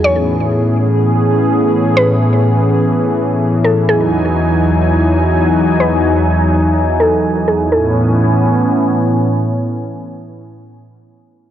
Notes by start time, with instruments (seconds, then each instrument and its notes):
0.04 analog synth pad A2 E3 B3 C#4 G#4, synth pluck C#5
1.97 synth pluck B4
3.64 synth pluck A4
3.88 analog synth pad E2 F#3 D#4 G#5, synth pluck G#4
5.80 synth pluck B4
7.00 synth pluck A4
7.48 synth pluck G#4
7.72 analog synth pad A2 E3 B3 C#4 G#5, synth pluck A4